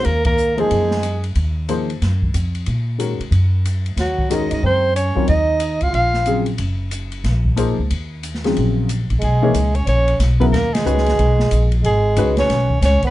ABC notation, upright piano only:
X:1
M:4/4
L:1/8
Q:"Swing" 1/4=183
K:Ebdor
V:1 name="Upright piano"
z3 [F,B,EAc]3 z2 | z2 [F,B,EAc] z4 z | z2 [E,A,DGB] z4 z | z2 [E,A,DGB]3 z2 [G,CFBd] |
z6 [D,G,CFA] z | z6 [F,B,EAc] z | z3 [D,G,CFA]3 z2 | [K:G#m] z [E,A,DGc] z4 z [C,F,B,EA] |
z2 [D,G,CFB]3 z3 | z2 [D,G,CFB]3 z3 |]